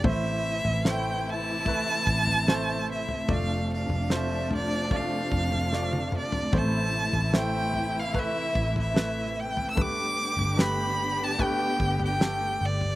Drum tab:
SD |----o-------o---|----o-------o---|----o-------o---|----o-------o---|
T1 |----------------|-------------o--|----------------|----------------|
T2 |----------------|--------------o-|----------------|----------------|
FT |o--o----o--o---o|o--o--o-o--o---o|o--o--o-o--o---o|o--o----o--o---o|
BD |o-------o-o-----|o-------o-o-----|o-------o-o-----|o-------o-o-----|